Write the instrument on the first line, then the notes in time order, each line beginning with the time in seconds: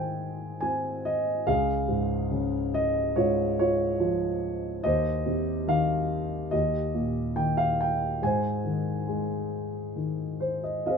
grand piano
Already playing: G#2 D#3 G#3 C5 F5 G5 G#5
0.61 C4 G#5
1.05 D#5
1.47 C#2 G#4 F5
1.88 G#2
2.31 C#3
2.74 D#5
3.16 G#2 F4 C#5
3.59 F4 C#5
4.00 F3
4.84 D#2 C5 D#5
5.26 C3
5.67 D#3 F5
6.51 D#2 G4 D#5
6.94 A#2
7.36 D#3 G5
7.57 F5
7.81 G5
8.22 G#2 C5 G#5
8.65 D#3
9.07 G#3
9.96 D#3
10.40 C5
10.64 D#5
10.86 C4 G#4 C5 D#5 F5